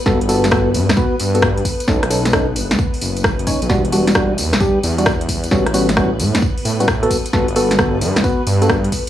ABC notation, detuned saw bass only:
X:1
M:4/4
L:1/16
Q:"Swing 16ths" 1/4=132
K:Glyd
V:1 name="Detuned saw bass" clef=bass
G,,,6 G,, B,,, z2 G,,4 z2 | B,,,6 F,,, ^D,, z2 F,,,3 F,,, z B,,, | E,,,6 E,, A,,, z2 E,,6 | A,,,6 A,, C,, z2 A,,4 z2 |
G,,,6 G,, B,,, z2 G,,4 z2 |]